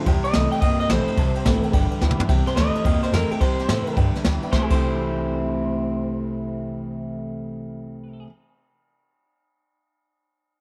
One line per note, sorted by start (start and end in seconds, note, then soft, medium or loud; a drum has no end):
0.06 0.24 E2 medium
0.06 0.60 C3 loud
0.06 0.33 C3 medium
0.06 0.33 G3 loud
0.06 0.17 C5 loud
0.06 0.17 E5 loud
0.06 0.18 G5 loud
0.06 kick loud
0.06 ride medium
0.24 0.30 C5 medium
0.24 0.51 D#5 loud
0.24 0.30 E5 medium
0.24 0.31 G5 medium
0.24 muted upright bass stroke medium
0.24 ride medium
0.34 0.52 C2 loud
0.34 0.60 C3 medium
0.34 0.51 E3 medium
0.34 0.52 A3 medium
0.34 0.61 A3 medium
0.34 0.52 C4 medium
0.34 0.51 E4 medium
0.34 0.45 C5 medium
0.34 0.45 E5 medium
0.34 0.46 G5 medium
0.34 snare loud
0.34 ride medium
0.51 0.63 C4 medium
0.51 0.62 E4 medium
0.51 0.58 C5 medium
0.51 0.58 E5 medium
0.51 0.61 G5 loud
0.51 0.59 G5 medium
0.51 ride medium
0.61 0.79 A1 medium
0.61 1.16 G2 medium
0.61 0.88 C3 medium
0.61 0.89 A#3 loud
0.61 0.72 C5 loud
0.61 0.79 D#5 loud
0.61 0.73 E5 medium
0.61 0.73 G5 loud
0.61 kick loud
0.61 ride medium
0.79 0.86 C5 medium
0.79 0.90 D#5 medium
0.79 0.86 E5 medium
0.79 ride medium
0.89 1.07 A#1 medium
0.89 1.16 C3 medium
0.89 1.07 E3 loud
0.89 1.16 A3 loud
0.89 1.07 A3 medium
0.89 1.08 C4 loud
0.89 1.07 E4 loud
0.89 1.00 C5 medium
0.89 1.71 C5 loud
0.89 1.01 E5 medium
0.89 1.01 G5 medium
0.89 snare loud
0.89 ride medium
1.07 1.18 C4 medium
1.07 1.17 E4 medium
1.07 1.13 C5 medium
1.07 1.14 E5 medium
1.07 1.14 G5 medium
1.07 muted upright bass stroke medium
1.07 ride medium
1.17 1.35 C2 medium
1.17 1.44 C3 medium
1.17 1.72 C3 medium
1.17 1.44 G3 loud
1.17 1.28 C5 loud
1.17 1.29 E5 medium
1.17 1.29 A5 loud
1.17 kick loud
1.17 ride medium
1.34 1.41 C5 medium
1.34 1.41 E5 medium
1.34 1.42 G5 loud
1.34 ride medium
1.45 1.63 A1 medium
1.45 1.71 C3 medium
1.45 1.63 E3 medium
1.45 1.72 A3 medium
1.45 1.63 A3 medium
1.45 1.63 C4 medium
1.45 1.62 E4 loud
1.45 1.56 C5 medium
1.45 1.56 E5 medium
1.45 1.57 G5 loud
1.45 kick medium
1.45 snare loud
1.45 ride medium
1.62 1.74 C4 medium
1.62 1.73 E4 medium
1.62 1.69 C5 medium
1.62 1.69 E5 medium
1.62 1.70 G5 loud
1.62 muted upright bass stroke medium
1.62 ride medium
1.72 1.91 G1 medium
1.72 1.99 G2 medium
1.72 1.99 D3 medium
1.72 2.00 G3 medium
1.72 1.83 B4 loud
1.72 1.84 D5 loud
1.72 1.84 G5 loud
1.72 kick loud
1.72 ride medium
1.89 1.96 B4 medium
1.89 1.97 D5 medium
1.89 1.97 G5 loud
1.89 muted upright bass stroke medium
1.89 ride medium
2.00 2.19 D2 medium
2.00 2.27 G2 medium
2.00 2.28 E3 medium
2.00 2.18 G3 loud
2.00 2.19 B3 medium
2.00 2.18 E4 loud
2.00 2.11 B4 medium
2.00 2.12 D5 medium
2.00 2.12 G5 loud
2.00 snare medium
2.11 mid tom medium
2.18 2.30 B3 medium
2.18 2.29 E4 medium
2.18 2.25 B4 medium
2.18 2.25 D5 medium
2.18 2.25 G5 loud
2.18 muted upright bass stroke medium
2.18 floor tom loud
2.28 2.47 C2 medium
2.28 2.55 C3 medium
2.28 2.83 C3 medium
2.28 2.55 G3 medium
2.28 2.39 C5 loud
2.28 2.40 E5 loud
2.28 2.40 G5 loud
2.28 kick loud
2.28 snare soft
2.28 ride medium
2.47 2.56 C5 medium
2.47 2.53 E5 medium
2.47 2.53 G5 medium
2.47 snare soft
2.47 ride medium
2.56 2.74 D2 medium
2.56 2.83 C3 medium
2.56 2.74 E3 medium
2.56 2.74 A3 medium
2.56 2.83 A3 loud
2.56 2.75 C4 medium
2.56 2.73 E4 loud
2.56 2.67 C5 medium
2.56 3.01 D#5 medium
2.56 2.68 E5 medium
2.56 2.68 A5 medium
2.56 snare loud
2.56 ride medium
2.74 2.85 C4 soft
2.74 2.84 E4 medium
2.74 2.80 C5 medium
2.74 2.81 E5 medium
2.74 2.81 A5 medium
2.74 ride medium
2.84 3.02 E2 medium
2.84 3.39 G2 medium
2.84 3.11 C3 medium
2.84 3.11 A#3 medium
2.84 2.95 C5 loud
2.84 2.96 E5 medium
2.84 2.96 G5 loud
2.84 kick loud
2.84 ride medium
3.02 3.08 C5 medium
3.02 3.13 C5 medium
3.02 3.09 E5 medium
3.02 3.09 G5 medium
3.02 muted upright bass stroke medium
3.02 snare soft
3.02 ride medium
3.12 3.30 F2 loud
3.12 3.39 C3 medium
3.12 3.30 E3 loud
3.12 3.30 A3 medium
3.12 3.39 A3 medium
3.12 3.30 C4 loud
3.12 3.29 E4 loud
3.12 3.31 A#4 medium
3.12 3.23 C5 medium
3.12 3.24 E5 medium
3.12 3.24 G5 medium
3.12 snare loud
3.12 ride medium
3.30 3.41 C4 medium
3.30 3.40 E4 medium
3.30 3.41 G4 medium
3.30 3.36 C5 medium
3.30 3.37 E5 medium
3.30 3.37 A5 medium
3.30 muted upright bass stroke medium
3.30 ride medium
3.40 3.58 G2 medium
3.40 3.95 C3 medium
3.40 3.67 C3 medium
3.40 3.67 G3 loud
3.40 3.51 C5 loud
3.40 3.95 C5 loud
3.40 3.52 E5 medium
3.40 3.52 G5 loud
3.40 kick loud
3.40 ride medium
3.58 3.64 C5 medium
3.58 3.65 E5 medium
3.58 3.65 G5 medium
3.58 muted upright bass stroke soft
3.58 snare soft
3.58 ride medium
3.68 3.86 A2 medium
3.68 3.95 C3 medium
3.68 3.86 E3 medium
3.68 3.86 A3 medium
3.68 3.95 A3 medium
3.68 3.86 C4 loud
3.68 3.85 E4 medium
3.68 3.79 C5 medium
3.68 3.80 E5 medium
3.68 3.80 G5 medium
3.68 snare loud
3.68 ride medium
3.86 3.97 C4 soft
3.86 3.96 E4 medium
3.86 3.92 C5 medium
3.86 3.93 E5 medium
3.86 3.93 G5 medium
3.86 muted upright bass stroke medium
3.86 ride medium
3.96 4.14 G2 medium
3.96 4.23 G2 medium
3.96 4.23 D3 medium
3.96 4.23 G3 medium
3.96 4.07 B4 loud
3.96 4.07 D5 loud
3.96 4.08 G5 loud
3.96 kick loud
3.96 ride medium
4.14 4.20 B4 medium
4.14 4.21 D5 medium
4.14 4.21 E5 loud
4.14 muted upright bass stroke medium
4.14 snare soft
4.14 ride medium
4.24 4.42 D2 medium
4.24 4.51 G2 medium
4.24 4.51 E3 medium
4.24 4.42 G3 loud
4.24 4.42 B3 loud
4.24 4.41 E4 loud
4.24 4.35 B4 medium
4.24 4.36 D5 medium
4.24 4.36 G5 medium
4.24 snare loud
4.24 ride medium
4.42 4.53 B3 medium
4.42 4.52 E4 medium
4.42 4.48 B4 medium
4.42 4.49 D5 medium
4.42 4.49 G5 loud
4.42 ride medium
4.49 4.69 C3 medium
4.49 4.61 C5 medium
4.49 4.63 C5 loud
4.49 4.63 E5 medium
4.49 snare loud
4.53 4.63 C2 loud
4.53 4.70 E3 medium
4.53 4.70 E3 loud
4.53 4.71 A3 medium
4.53 4.71 A3 loud
4.53 4.72 C4 medium
4.53 4.72 E4 loud
4.53 4.72 E4 medium
4.53 4.73 G4 loud
4.53 kick loud
4.67 8.22 C2 medium
4.67 8.26 C3 loud
4.67 8.26 C3 medium
4.67 8.26 E3 medium
4.67 8.26 E3 loud
4.67 8.20 C5 medium
4.67 8.22 E5 medium
4.67 kick loud
4.67 crash medium
4.71 8.27 A3 medium
4.71 8.27 A3 loud
4.71 8.27 C4 loud
4.71 8.27 E4 loud
4.71 8.27 E4 medium
4.71 8.27 G4 loud
4.71 8.23 C5 loud
4.71 8.24 G5 medium